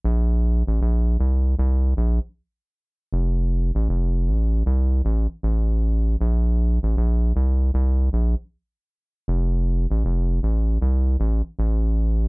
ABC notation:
X:1
M:4/4
L:1/16
Q:"Swing 16ths" 1/4=78
K:Fmix
V:1 name="Analog synth bass" clef=bass
B,,,3 A,,, B,,,2 C,,2 C,,2 B,,, z4 z | F,,,3 A,,, F,,,2 A,,,2 C,,2 A,,, z A,,,4 | B,,,3 A,,, B,,,2 C,,2 C,,2 B,,, z4 z | F,,,3 A,,, F,,,2 A,,,2 C,,2 A,,, z A,,,4 |]